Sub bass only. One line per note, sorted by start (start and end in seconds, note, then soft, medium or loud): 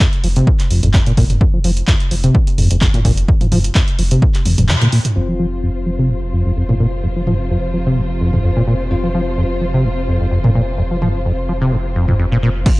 0.24 0.42 F1 medium
0.71 0.80 F1 medium
0.83 1.00 F1 medium
1.17 1.36 F1 medium
1.64 1.82 F1 loud
2.11 2.29 F1 medium
2.58 2.68 F1 medium
2.71 2.88 F1 medium
3.05 3.23 F1 medium
3.52 3.70 F1 loud
3.99 4.17 F1 medium
4.46 4.55 F1 medium
4.58 4.69 D#1 medium
5.16 12.64 F1 medium